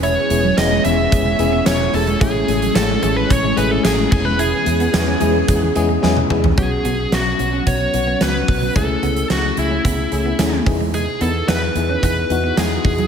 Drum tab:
CC |----------------|--------------x-|----------------|----------------|
HH |x-x-x-x-x-x-x-ox|x-xxx-x-x-x-x---|x-xxx-x-x-x-----|x-x-x-x-x-x-x-o-|
TB |----x-------x---|----x-------x---|----x-----------|----------------|
SD |----o-------o---|----o-------o---|----o-------o---|----o-------o---|
T1 |----------------|----------------|-------------o--|----------------|
T2 |----------------|----------------|--------------o-|----------------|
FT |----------------|----------------|---------------o|----------------|
BD |--------o-------|o-------o-----o-|--------o-------|o-------o-----o-|

CC |----------------|----------------|
HH |x-xxx-x-x-x-x-o-|x-x-x-x-x-x-x-ox|
TB |----------------|----------------|
SD |----o-------o---|----o-------o---|
T1 |----------------|----------------|
T2 |----------------|----------------|
FT |----------------|----------------|
BD |o-------o-----o-|--------o-----o-|